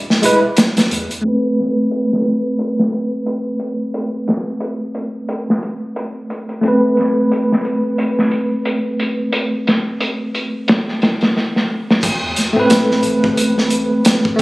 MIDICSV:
0, 0, Header, 1, 4, 480
1, 0, Start_track
1, 0, Key_signature, 0, "minor"
1, 0, Tempo, 674157
1, 889, Time_signature, 4, 2, 24, 8
1, 10266, End_track
2, 0, Start_track
2, 0, Title_t, "Tine electric piano"
2, 0, Program_c, 0, 4
2, 158, Note_on_c, 0, 56, 87
2, 170, Note_on_c, 0, 64, 77
2, 181, Note_on_c, 0, 71, 96
2, 268, Note_off_c, 0, 56, 0
2, 274, Note_off_c, 0, 64, 0
2, 280, Note_off_c, 0, 71, 0
2, 865, Note_on_c, 0, 57, 61
2, 888, Note_on_c, 0, 60, 57
2, 912, Note_on_c, 0, 71, 74
2, 4692, Note_off_c, 0, 57, 0
2, 4704, Note_off_c, 0, 60, 0
2, 4709, Note_on_c, 0, 57, 65
2, 4716, Note_off_c, 0, 71, 0
2, 4733, Note_on_c, 0, 60, 62
2, 4755, Note_on_c, 0, 71, 74
2, 8534, Note_off_c, 0, 57, 0
2, 8546, Note_off_c, 0, 60, 0
2, 8557, Note_off_c, 0, 71, 0
2, 8922, Note_on_c, 0, 57, 90
2, 8944, Note_on_c, 0, 60, 83
2, 8967, Note_on_c, 0, 71, 97
2, 10212, Note_off_c, 0, 57, 0
2, 10223, Note_off_c, 0, 60, 0
2, 10224, Note_on_c, 0, 57, 95
2, 10234, Note_off_c, 0, 71, 0
2, 10266, Note_off_c, 0, 57, 0
2, 10266, End_track
3, 0, Start_track
3, 0, Title_t, "Sub bass"
3, 0, Program_c, 1, 38
3, 0, Note_on_c, 1, 28, 105
3, 168, Note_off_c, 1, 28, 0
3, 172, Note_on_c, 1, 28, 89
3, 292, Note_off_c, 1, 28, 0
3, 650, Note_on_c, 1, 40, 97
3, 771, Note_off_c, 1, 40, 0
3, 8568, Note_on_c, 1, 33, 95
3, 8690, Note_off_c, 1, 33, 0
3, 8709, Note_on_c, 1, 40, 88
3, 8797, Note_off_c, 1, 40, 0
3, 8948, Note_on_c, 1, 45, 93
3, 9270, Note_off_c, 1, 45, 0
3, 9290, Note_on_c, 1, 33, 92
3, 9881, Note_off_c, 1, 33, 0
3, 10266, End_track
4, 0, Start_track
4, 0, Title_t, "Drums"
4, 73, Note_on_c, 9, 38, 54
4, 144, Note_off_c, 9, 38, 0
4, 163, Note_on_c, 9, 42, 70
4, 234, Note_off_c, 9, 42, 0
4, 403, Note_on_c, 9, 42, 74
4, 413, Note_on_c, 9, 38, 106
4, 474, Note_off_c, 9, 42, 0
4, 485, Note_off_c, 9, 38, 0
4, 548, Note_on_c, 9, 42, 74
4, 555, Note_on_c, 9, 38, 97
4, 619, Note_off_c, 9, 42, 0
4, 626, Note_off_c, 9, 38, 0
4, 649, Note_on_c, 9, 42, 74
4, 720, Note_off_c, 9, 42, 0
4, 789, Note_on_c, 9, 42, 42
4, 860, Note_off_c, 9, 42, 0
4, 887, Note_on_c, 9, 42, 63
4, 959, Note_off_c, 9, 42, 0
4, 1133, Note_on_c, 9, 42, 54
4, 1140, Note_on_c, 9, 38, 29
4, 1204, Note_off_c, 9, 42, 0
4, 1211, Note_off_c, 9, 38, 0
4, 1362, Note_on_c, 9, 42, 74
4, 1433, Note_off_c, 9, 42, 0
4, 1517, Note_on_c, 9, 38, 37
4, 1589, Note_off_c, 9, 38, 0
4, 1603, Note_on_c, 9, 42, 55
4, 1674, Note_off_c, 9, 42, 0
4, 1843, Note_on_c, 9, 42, 76
4, 1914, Note_off_c, 9, 42, 0
4, 1989, Note_on_c, 9, 38, 37
4, 2060, Note_off_c, 9, 38, 0
4, 2083, Note_on_c, 9, 42, 56
4, 2155, Note_off_c, 9, 42, 0
4, 2323, Note_on_c, 9, 42, 74
4, 2394, Note_off_c, 9, 42, 0
4, 2559, Note_on_c, 9, 42, 54
4, 2630, Note_off_c, 9, 42, 0
4, 2805, Note_on_c, 9, 42, 83
4, 2877, Note_off_c, 9, 42, 0
4, 3044, Note_on_c, 9, 42, 57
4, 3052, Note_on_c, 9, 38, 39
4, 3115, Note_off_c, 9, 42, 0
4, 3123, Note_off_c, 9, 38, 0
4, 3278, Note_on_c, 9, 42, 75
4, 3349, Note_off_c, 9, 42, 0
4, 3521, Note_on_c, 9, 42, 57
4, 3593, Note_off_c, 9, 42, 0
4, 3764, Note_on_c, 9, 42, 77
4, 3835, Note_off_c, 9, 42, 0
4, 3916, Note_on_c, 9, 38, 39
4, 3987, Note_off_c, 9, 38, 0
4, 4006, Note_on_c, 9, 42, 58
4, 4077, Note_off_c, 9, 42, 0
4, 4244, Note_on_c, 9, 42, 76
4, 4315, Note_off_c, 9, 42, 0
4, 4486, Note_on_c, 9, 42, 64
4, 4557, Note_off_c, 9, 42, 0
4, 4619, Note_on_c, 9, 42, 39
4, 4691, Note_off_c, 9, 42, 0
4, 4722, Note_on_c, 9, 42, 69
4, 4793, Note_off_c, 9, 42, 0
4, 4962, Note_on_c, 9, 42, 51
4, 4978, Note_on_c, 9, 38, 34
4, 5033, Note_off_c, 9, 42, 0
4, 5049, Note_off_c, 9, 38, 0
4, 5208, Note_on_c, 9, 42, 70
4, 5279, Note_off_c, 9, 42, 0
4, 5357, Note_on_c, 9, 38, 39
4, 5428, Note_off_c, 9, 38, 0
4, 5445, Note_on_c, 9, 42, 59
4, 5516, Note_off_c, 9, 42, 0
4, 5684, Note_on_c, 9, 42, 75
4, 5755, Note_off_c, 9, 42, 0
4, 5829, Note_on_c, 9, 38, 37
4, 5901, Note_off_c, 9, 38, 0
4, 5918, Note_on_c, 9, 42, 58
4, 5989, Note_off_c, 9, 42, 0
4, 6161, Note_on_c, 9, 42, 74
4, 6232, Note_off_c, 9, 42, 0
4, 6404, Note_on_c, 9, 42, 61
4, 6476, Note_off_c, 9, 42, 0
4, 6640, Note_on_c, 9, 42, 83
4, 6711, Note_off_c, 9, 42, 0
4, 6887, Note_on_c, 9, 42, 62
4, 6895, Note_on_c, 9, 38, 41
4, 6958, Note_off_c, 9, 42, 0
4, 6966, Note_off_c, 9, 38, 0
4, 7124, Note_on_c, 9, 42, 82
4, 7195, Note_off_c, 9, 42, 0
4, 7366, Note_on_c, 9, 42, 59
4, 7437, Note_off_c, 9, 42, 0
4, 7604, Note_on_c, 9, 42, 71
4, 7614, Note_on_c, 9, 38, 99
4, 7675, Note_off_c, 9, 42, 0
4, 7685, Note_off_c, 9, 38, 0
4, 7750, Note_on_c, 9, 38, 36
4, 7821, Note_off_c, 9, 38, 0
4, 7845, Note_on_c, 9, 42, 78
4, 7854, Note_on_c, 9, 38, 103
4, 7917, Note_off_c, 9, 42, 0
4, 7925, Note_off_c, 9, 38, 0
4, 7981, Note_on_c, 9, 42, 61
4, 7993, Note_on_c, 9, 38, 89
4, 8053, Note_off_c, 9, 42, 0
4, 8064, Note_off_c, 9, 38, 0
4, 8093, Note_on_c, 9, 38, 56
4, 8165, Note_off_c, 9, 38, 0
4, 8233, Note_on_c, 9, 38, 56
4, 8304, Note_off_c, 9, 38, 0
4, 8477, Note_on_c, 9, 38, 75
4, 8548, Note_off_c, 9, 38, 0
4, 8563, Note_on_c, 9, 49, 93
4, 8566, Note_on_c, 9, 36, 106
4, 8566, Note_on_c, 9, 42, 86
4, 8634, Note_off_c, 9, 49, 0
4, 8637, Note_off_c, 9, 36, 0
4, 8637, Note_off_c, 9, 42, 0
4, 8803, Note_on_c, 9, 42, 63
4, 8816, Note_on_c, 9, 38, 35
4, 8874, Note_off_c, 9, 42, 0
4, 8887, Note_off_c, 9, 38, 0
4, 9042, Note_on_c, 9, 42, 89
4, 9050, Note_on_c, 9, 38, 123
4, 9113, Note_off_c, 9, 42, 0
4, 9121, Note_off_c, 9, 38, 0
4, 9191, Note_on_c, 9, 38, 47
4, 9263, Note_off_c, 9, 38, 0
4, 9276, Note_on_c, 9, 42, 60
4, 9347, Note_off_c, 9, 42, 0
4, 9426, Note_on_c, 9, 36, 95
4, 9497, Note_off_c, 9, 36, 0
4, 9523, Note_on_c, 9, 42, 89
4, 9594, Note_off_c, 9, 42, 0
4, 9668, Note_on_c, 9, 38, 44
4, 9739, Note_off_c, 9, 38, 0
4, 9757, Note_on_c, 9, 42, 67
4, 9828, Note_off_c, 9, 42, 0
4, 10002, Note_on_c, 9, 42, 88
4, 10010, Note_on_c, 9, 38, 123
4, 10073, Note_off_c, 9, 42, 0
4, 10082, Note_off_c, 9, 38, 0
4, 10146, Note_on_c, 9, 36, 90
4, 10217, Note_off_c, 9, 36, 0
4, 10266, End_track
0, 0, End_of_file